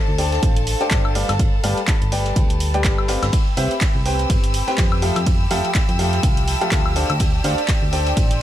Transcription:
Already playing: A4 C5 F5 A5
0.08 D2
0.18 D4 A4 C5 D5 G5, open hi-hat, ride
0.32 snare, closed hi-hat
0.42 A1, kick, closed hi-hat, ride
0.57 closed hi-hat
0.67 open hi-hat, ride
0.81 D4 A4 C5 D5 G5, snare, closed hi-hat
0.91 G1, kick, snare, clap, closed hi-hat, ride
1.05 high woodblock
1.15 G3 G4 B4 D5 F5 B5, open hi-hat, ride
1.29 G1, snare, closed hi-hat, high woodblock
1.39 kick, closed hi-hat, ride
1.64 G1 G3 G4 B4 D5 F5, open hi-hat, ride
1.77 closed hi-hat, ride
1.87 kick, snare, clap, closed hi-hat, ride
1.93 G5
2.02 G1, closed hi-hat
2.12 G3 G4 B4 D5 G5, open hi-hat, ride
2.25 snare, closed hi-hat
2.36 D2, kick, closed hi-hat, ride
2.50 closed hi-hat
2.60 open hi-hat, ride
2.74 G3 G4 B4 D5 G5, closed hi-hat
2.84 G1, kick, snare, clap, closed hi-hat, ride
2.98 high woodblock
3.08 C4 G4 B4 D5 F5, snare, open hi-hat, ride
3.22 G1, snare, closed hi-hat, ride, high woodblock
3.32 G4 E6, kick, closed hi-hat, ride
3.57 C2 C4 G4 B4 C5 E5, open hi-hat, ride
3.71 closed hi-hat, ride
3.81 kick, snare, clap, closed hi-hat, ride
3.95 C2
4.05 C4 G4 B4 C5 G5, open hi-hat, ride
4.18 snare, closed hi-hat
4.29 G1, kick, closed hi-hat, ride
4.44 closed hi-hat
4.54 open hi-hat, ride
4.68 C4 G4 B4 C5 G5, snare, closed hi-hat
4.78 F2, kick, snare, clap, closed hi-hat, ride
4.92 high woodblock
5.02 F3 G4 A4 E5 F5, open hi-hat, ride
5.16 F2, snare, closed hi-hat, high woodblock
5.26 kick, closed hi-hat, ride
5.51 F2 F3 G4 A4 E5 F5, open hi-hat, ride
5.65 closed hi-hat, ride
5.75 kick, snare, clap, closed hi-hat, ride
5.89 F2 A5, closed hi-hat
5.99 F3 G4 A4 E5 F5, open hi-hat, ride
6.13 snare, closed hi-hat
6.23 C2, kick, closed hi-hat, ride
6.37 closed hi-hat
6.47 open hi-hat, ride
6.61 F3 G4 A4 E5 F5, closed hi-hat
6.71 D2, kick, snare, clap, closed hi-hat, ride
6.86 high woodblock
6.96 D4 A4 C5 D5 F5, open hi-hat, ride
7.10 D2, closed hi-hat, high woodblock
7.19 kick, closed hi-hat, ride
7.44 D2 D4 A4 C5 D5 F5, open hi-hat, ride
7.58 closed hi-hat, ride
7.68 G5, kick, snare, clap, closed hi-hat, ride
7.82 D2 C6
7.93 D4 A4 C5 D5 G5, open hi-hat, ride
8.07 snare, closed hi-hat
8.17 A1, kick, closed hi-hat, ride
8.31 closed hi-hat

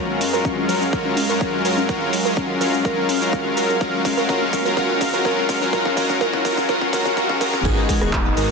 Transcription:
Already playing: F#2 F#3 G#3 C#4 F4 F#4 A#4 F5, riser
0.09 C#4
0.21 C#4, open hi-hat, shaker
0.33 F#3 C#4 F4 F#4 A#4, shaker
0.45 C#4, kick, high conga, shaker
0.57 C#4
0.69 F#3 C#4 F4 F#4 A#4, open hi-hat, low conga, shaker
0.81 C#4, shaker
0.93 F#3 C#4 F4 F#4 A#4, kick, shaker
1.05 C#4
1.17 C#4, open hi-hat, high conga, shaker
1.29 F#3 C#4 F4 F#4 A#4, shaker
1.41 C#4, kick, shaker
1.54 C#4
1.65 F#3 C#4 F4 F#4 A#4, open hi-hat, shaker
1.77 C#4, high conga, shaker
1.89 F#3 C#4 F4 F#4 A#4, kick, shaker
2.01 C#4
2.13 C#4, open hi-hat, shaker
2.25 F#3 C#4 F4 F#4 A#4, shaker
2.37 C#4, kick, high conga, shaker
2.49 C#4
2.61 F#3 C#4 F4 F#4 A#4, open hi-hat, low conga, shaker
2.74 C#4, shaker
2.85 F#3 C#4 F4 F#4 A#4, kick, shaker
2.98 C#4
3.09 C#4, open hi-hat, high conga, shaker
3.21 F#3 C#4 F4 F#4 A#4, shaker
3.33 C#4, kick, shaker
3.45 C#4
3.57 F#3 C#4 F4 F#4 A#4, open hi-hat, shaker
3.69 C#4, high conga, shaker
3.81 F#3 C#4 F4 F#4 A#4, kick, shaker
3.94 C#4
4.05 C#4, kick, open hi-hat, shaker
4.18 F#3 C#4 F4 F#4 A#4, shaker
4.29 F#3 C#4 F4 F#4 A#4, kick, high conga, shaker
4.42 C#4
4.53 C#4, kick, open hi-hat, low conga, shaker
4.65 F#3 C#4 F4 F#4 A#4, shaker
4.77 F#3 C#4 F4 F#4 A#4, kick, shaker
4.90 C#4
5.01 C#4, kick, open hi-hat, high conga, shaker
5.13 F#3 C#4 F4 F#4 A#4, shaker
5.25 F#3 C#4 F4 F#4 A#4, kick, shaker
5.38 C#4
5.49 C#4, kick, open hi-hat, shaker
5.61 F#3 C#4 F4 F#4 A#4, high conga, shaker
5.73 F#3 C#4 F4 F#4 A#4, kick, shaker
5.85 C#4, kick
5.97 F#3 C#4 F4 F#4 A#4, kick, open hi-hat, low conga, shaker
6.09 C#4, kick, shaker
6.21 F#3 C#4 F4 F#4 A#4, kick, high conga, shaker
6.33 C#4, kick
6.45 F#3 C#4 F4 F#4 A#4, kick, open hi-hat, low conga, shaker
6.57 C#4, kick, shaker
6.69 F#3 C#4 F4 F#4 A#4, kick, shaker
6.81 C#4, kick
6.93 F#3 C#4 F4 F#4 A#4, kick, open hi-hat, high conga, shaker
7.05 C#4, kick, shaker
7.17 F#3 C#4 F4 F#4 A#4, kick, shaker
7.29 C#4, kick
7.41 F#3 C#4 F4 F#4 A#4, kick, open hi-hat, shaker
7.53 C#4, kick, high conga, shaker
7.65 G#1 G#2 G#3 B3 D#4 F#4 G#4 A#4 D#5, kick, crash, shaker
7.78 G#3
7.89 G#3, kick, open hi-hat, shaker
8.01 D#1 G#2 B3 D#4 F#4 G#4, cross-stick, shaker
8.13 G#3, kick, clap, shaker
8.26 G#3
8.37 G#1 G#2 B3 D#4 F#4 G#4 A#4, open hi-hat, shaker

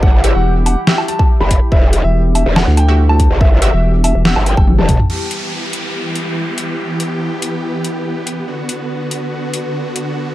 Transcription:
Already playing: G1 E4 G4
0.03 F#5, kick
0.24 F#4 G4 E5, closed hi-hat
0.35 E1 F#5
0.66 F#5, open hi-hat, low woodblock
0.87 F#4 G4 E5 G5, snare
0.98 low woodblock
1.08 A5, closed hi-hat
1.19 kick, low woodblock
1.41 F#1 B5
1.51 kick, closed hi-hat
1.72 E1 E5, kick
1.93 closed hi-hat
2.04 E1 E5
2.35 E5, open hi-hat, low woodblock
2.46 E1
2.56 F#5, snare, low woodblock
2.67 D2
2.77 G5, closed hi-hat, low woodblock
2.88 F#4 G4 E5
3.09 A5, low woodblock
3.20 kick, closed hi-hat
3.31 G1
3.41 E5, kick
3.62 F#4 G4 E5, closed hi-hat
3.73 E1 E5
4.04 E5, open hi-hat, low woodblock
4.15 E1
4.25 F#4 G4 E5 F#5, snare
4.36 G1, low woodblock
4.46 G5, closed hi-hat
4.57 F#1, kick, low woodblock
4.68 high tom
4.78 E1 A5, high tom
4.89 kick, closed hi-hat, mid tom
5.00 mid tom
5.10 E3 B3 E4 G4, crash, downlifter
5.31 B4, closed hi-hat
5.73 closed hi-hat
6.01 G5
6.15 closed hi-hat
6.58 closed hi-hat
7.00 closed hi-hat
7.42 closed hi-hat
7.84 closed hi-hat
8.27 closed hi-hat
8.48 D3 D4 F#4
8.69 closed hi-hat
9.01 F#5
9.11 closed hi-hat
9.54 closed hi-hat
9.96 closed hi-hat

